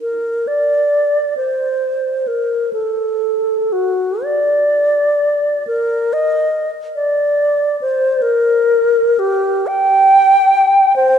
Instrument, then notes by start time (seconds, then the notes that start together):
alto flute
0.01 A#4
0.47 D5
1.37 C5
2.27 A#4
2.73 A4
3.72 F#4
4.23 D5
5.67 A#4
6.13 D#5
6.95 D5
7.81 C5
8.22 A#4
9.19 G4
9.67 G5
10.96 C5